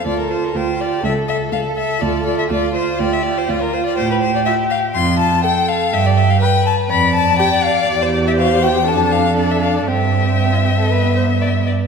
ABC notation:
X:1
M:4/4
L:1/16
Q:1/4=122
K:Dm
V:1 name="Violin"
d B c B c2 d2 e2 e2 f2 e2 | d2 d e d2 c2 d e d c d B c d | [K:C] c B c d e2 f2 c'2 a2 g2 f2 | e d e f g2 a2 b2 a2 g2 f2 |
d c d e f2 g2 a2 f2 d e f d | e12- e2 z2 |]
V:2 name="Violin"
A4 G4 A8- | A4 F4 G4 F4 | [K:C] G8 F4 A4 | G4 B4 d8- |
d4 c4 A8 | G4 G F G A B2 c2 d2 d2 |]
V:3 name="Viola"
F2 F2 F2 F2 A2 A2 A2 A2 | F2 F2 F2 F2 F2 F2 F2 F2 | [K:C] z4 F4 z4 A4 | z4 B4 z4 G4 |
G8 D4 D4 | C8 B,6 z2 |]
V:4 name="Cello" clef=bass
D,,4 D,,4 ^C,,4 C,,4 | D,,4 D,,4 D,,4 D,,4 | [K:C] A,,4 z4 F,,4 z4 | G,,4 z4 F,,4 z4 |
E,,8 F,,8 | G,,12- G,,2 z2 |]